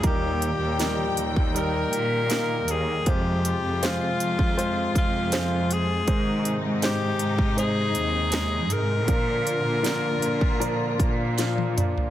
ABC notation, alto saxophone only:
X:1
M:4/4
L:1/8
Q:1/4=79
K:Eb
V:1 name="Alto saxophone"
G2 G z B3 A | G2 F3 F2 A- | A z G2 A3 B- | B6 z2 |]